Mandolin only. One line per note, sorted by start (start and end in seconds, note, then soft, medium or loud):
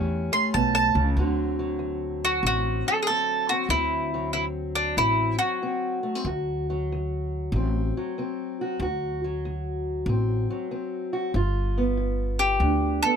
0.33 0.53 C6 loud
0.54 0.74 A5 medium
0.75 1.16 A5 loud
2.25 2.44 F#4 medium
2.47 2.88 F#4 loud
2.88 3.02 A4 loud
3.03 3.07 G#4 medium
3.07 3.50 A4 loud
3.49 3.70 F#4 medium
3.70 4.32 E4 loud
4.33 4.45 E4 medium
4.75 4.98 D4 medium
4.98 5.37 E4 loud
5.39 6.21 F#4 medium
12.39 13.02 G4 medium
13.03 13.16 A4 medium